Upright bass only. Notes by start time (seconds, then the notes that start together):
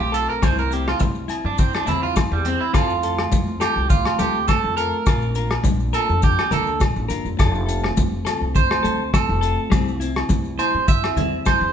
0.00 B1
0.43 C2
1.01 C2
1.45 G2
1.87 E2
2.31 E2
2.74 F2
3.32 F2
3.76 C2
4.19 D2
4.64 F2
5.07 A#1
5.65 A#1
6.09 F2
6.51 D2
6.81 A#1
6.96 A1
7.10 G1
7.25 F1
7.39 F1
7.98 F1
8.41 C2
8.84 D2
9.29 F1
9.72 C2
10.30 C2
10.74 G2
11.16 E2
11.61 E2